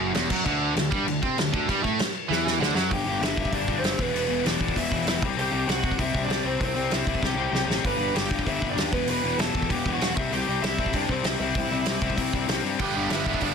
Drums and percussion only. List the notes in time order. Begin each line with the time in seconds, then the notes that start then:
0.15 snare, crash
0.30 kick, crash
0.46 kick, crash
0.77 snare, crash
0.92 kick
1.08 crash
1.23 kick
1.38 snare, crash
1.54 kick
1.69 kick, crash
1.84 kick
1.99 snare, crash
2.32 snare
2.47 snare
2.62 snare
2.77 snare
2.91 kick, open hi-hat
3.23 snare, open hi-hat
3.37 kick
3.45 kick
3.53 kick, open hi-hat
3.68 kick
3.84 snare, open hi-hat
3.99 kick
4.16 open hi-hat
4.46 snare, open hi-hat
4.61 kick
4.68 kick
4.76 kick, open hi-hat
4.92 kick
5.07 snare, open hi-hat
5.22 kick
5.39 open hi-hat
5.69 snare, open hi-hat
5.84 kick
5.91 kick
5.99 kick, open hi-hat
6.15 kick
6.30 snare, open hi-hat
6.61 kick, open hi-hat
6.91 snare, open hi-hat
7.07 kick
7.15 kick
7.23 kick, snare
7.55 snare
7.71 snare
7.84 kick, open hi-hat
8.16 snare, open hi-hat
8.31 kick
8.39 kick
8.47 kick, open hi-hat
8.62 kick
8.78 snare, open hi-hat
8.93 kick
9.07 open hi-hat
9.39 snare, open hi-hat
9.55 kick
9.62 kick
9.70 kick, open hi-hat
9.86 kick
10.01 snare, open hi-hat
10.17 kick
10.33 open hi-hat
10.63 snare, open hi-hat
10.78 kick
10.86 kick
10.93 kick, open hi-hat
11.09 kick
11.24 snare, open hi-hat
11.55 kick, open hi-hat
11.86 snare, open hi-hat
12.02 kick
12.10 kick
12.18 kick, open hi-hat
12.33 kick
12.48 snare, open hi-hat
12.79 kick, open hi-hat
13.10 snare, open hi-hat
13.26 kick
13.34 kick
13.41 kick, open hi-hat